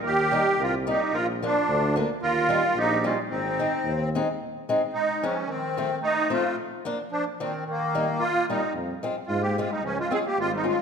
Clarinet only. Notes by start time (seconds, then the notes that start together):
0.02 A#4
0.60 A#4
0.88 G4
1.14 A#4
1.44 F4
2.23 A#4
2.78 G4
3.06 F4
3.31 D#4
4.94 G#3
5.23 F3
5.47 D#3
6.01 A3
6.30 A3
7.11 F3
7.40 D#3
7.66 D#3
8.21 A#3
8.48 G3
9.28 G#3
9.43 A#3
9.60 G#3
9.71 G3
9.84 F3
9.97 G#3
10.11 C4
10.27 A#3
10.39 G#3
10.50 G3
10.68 G#3